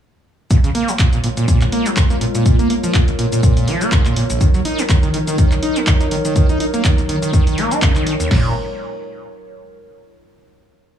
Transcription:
0.50 0.58 A#2 medium
0.50 4.37 G#3 medium
0.50 4.37 F4 medium
0.50 4.37 A#4 medium
0.50 8.27 C#5 medium
0.50 kick loud
0.50 closed hi-hat medium
0.50 shaker medium
0.64 0.70 C#3 medium
0.64 closed hi-hat soft
0.64 shaker soft
0.75 0.90 A#3 loud
0.75 open hi-hat loud
0.88 0.92 F3 medium
0.88 open hi-hat medium
0.88 shaker medium
0.99 1.07 A#2 medium
0.99 kick loud
0.99 clap loud
0.99 closed hi-hat medium
0.99 shaker medium
1.13 1.19 A#2 medium
1.13 closed hi-hat soft
1.13 shaker soft
1.24 1.28 A#2 medium
1.24 open hi-hat loud
1.37 1.46 A#2 medium
1.37 closed hi-hat medium
1.37 shaker medium
1.48 1.59 A#2 loud
1.48 kick loud
1.48 closed hi-hat medium
1.48 shaker medium
1.61 1.65 A#2 loud
1.61 clap soft
1.61 closed hi-hat soft
1.61 shaker soft
1.72 1.88 A#3 loud
1.72 open hi-hat loud
1.86 1.90 F3 medium
1.86 closed hi-hat medium
1.86 shaker medium
1.97 2.04 A#2 medium
1.97 kick loud
1.97 clap loud
1.97 closed hi-hat medium
1.97 shaker medium
2.10 2.16 A#3 medium
2.10 closed hi-hat soft
2.10 shaker soft
2.21 2.26 A#2 medium
2.21 open hi-hat loud
2.35 2.44 A#2 medium
2.35 closed hi-hat medium
2.35 shaker medium
2.46 2.57 A#2 loud
2.46 kick loud
2.46 closed hi-hat medium
2.46 shaker medium
2.59 2.68 A#3 loud
2.59 closed hi-hat soft
2.59 shaker soft
2.70 2.75 A#3 loud
2.70 open hi-hat loud
2.84 2.93 F3 loud
2.84 closed hi-hat medium
2.84 shaker medium
2.94 3.02 A#2 medium
2.94 kick loud
2.94 clap loud
2.94 closed hi-hat medium
2.94 shaker medium
3.08 3.12 A#1 medium
3.08 closed hi-hat soft
3.08 shaker soft
3.19 3.26 A#2 medium
3.19 open hi-hat loud
3.32 3.41 A#2 medium
3.32 closed hi-hat medium
3.32 shaker medium
3.43 3.54 A#2 loud
3.43 kick loud
3.43 closed hi-hat medium
3.43 shaker medium
3.57 3.69 A#2 medium
3.57 open hi-hat medium
3.57 shaker soft
3.68 3.83 F3 medium
3.68 open hi-hat loud
3.81 3.90 A#3 medium
3.81 closed hi-hat medium
3.81 shaker medium
3.92 4.03 G#2 medium
3.92 kick loud
3.92 clap loud
3.92 closed hi-hat medium
3.92 shaker medium
4.05 4.14 A#2 medium
4.05 clap soft
4.05 closed hi-hat soft
4.05 shaker soft
4.16 4.24 A#2 medium
4.16 open hi-hat loud
4.30 4.39 A#1 medium
4.30 closed hi-hat medium
4.30 shaker medium
4.41 4.48 D#3 medium
4.41 8.27 F#3 medium
4.41 8.27 D#4 medium
4.41 8.27 A#4 medium
4.41 kick loud
4.41 closed hi-hat medium
4.41 shaker medium
4.54 4.60 F#3 medium
4.54 closed hi-hat soft
4.54 shaker soft
4.65 4.80 D#4 loud
4.65 open hi-hat loud
4.79 4.82 A#3 medium
4.79 open hi-hat medium
4.79 shaker medium
4.89 4.97 D#3 medium
4.89 kick loud
4.89 clap loud
4.89 closed hi-hat medium
4.89 shaker medium
5.03 5.09 D#3 medium
5.03 closed hi-hat soft
5.03 shaker soft
5.14 5.18 D#3 medium
5.14 open hi-hat loud
5.27 5.36 D#3 medium
5.27 closed hi-hat medium
5.27 shaker medium
5.38 5.49 D#3 loud
5.38 kick loud
5.38 closed hi-hat medium
5.38 shaker medium
5.52 5.55 D#3 loud
5.52 clap soft
5.52 closed hi-hat soft
5.52 shaker soft
5.63 5.78 D#4 loud
5.63 open hi-hat loud
5.76 5.80 A#3 medium
5.76 closed hi-hat medium
5.76 shaker medium
5.87 5.95 D#3 medium
5.87 kick loud
5.87 clap loud
5.87 closed hi-hat medium
5.87 shaker medium
6.01 6.07 D#4 medium
6.01 closed hi-hat soft
6.01 shaker soft
6.11 6.16 D#3 medium
6.11 open hi-hat loud
6.25 6.34 D#3 medium
6.25 closed hi-hat medium
6.25 shaker medium
6.36 6.47 D#3 loud
6.36 kick loud
6.36 closed hi-hat medium
6.36 shaker medium
6.49 6.58 D#4 loud
6.49 closed hi-hat soft
6.49 shaker soft
6.60 6.65 D#4 loud
6.60 open hi-hat loud
6.74 6.83 A#3 loud
6.74 closed hi-hat medium
6.74 shaker medium
6.85 6.92 D#3 medium
6.85 kick loud
6.85 clap loud
6.85 closed hi-hat medium
6.85 shaker medium
6.98 7.02 D#2 medium
6.98 closed hi-hat soft
6.98 shaker soft
7.09 7.16 D#3 medium
7.09 open hi-hat loud
7.22 7.32 D#3 medium
7.22 closed hi-hat soft
7.22 shaker medium
7.33 7.45 D#3 medium
7.33 kick loud
7.33 closed hi-hat medium
7.33 shaker medium
7.47 7.59 D#3 medium
7.47 open hi-hat medium
7.47 shaker soft
7.58 7.73 A#3 medium
7.58 open hi-hat loud
7.71 7.80 D#4 medium
7.71 closed hi-hat soft
7.71 shaker medium
7.82 7.93 C#3 medium
7.82 kick loud
7.82 clap loud
7.82 closed hi-hat medium
7.82 shaker medium
7.96 8.05 D#3 medium
7.96 clap soft
7.96 closed hi-hat soft
7.96 shaker soft
8.06 8.14 D#3 medium
8.06 open hi-hat loud
8.20 8.29 D#2 medium
8.20 closed hi-hat medium
8.20 shaker medium
8.31 8.54 A#2 medium
8.31 8.54 G#3 medium
8.31 8.54 F4 medium
8.31 8.54 A#4 medium
8.31 8.54 C#5 medium
8.31 kick loud
8.31 snare loud
8.31 crash loud

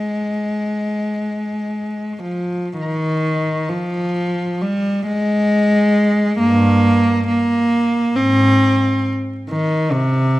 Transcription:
0.00 2.20 G#3 medium
2.23 2.73 F3 medium
2.77 3.70 D#3 medium
3.69 4.62 F3 medium
4.62 5.07 G3 medium
5.07 6.37 G#3 loud
6.39 7.25 G2 medium
6.39 7.26 A#3 loud
7.28 8.14 A#3 loud
8.16 9.02 G#2 medium
8.16 9.06 C4 medium
9.50 9.91 D#3 medium
9.93 10.40 C3 medium

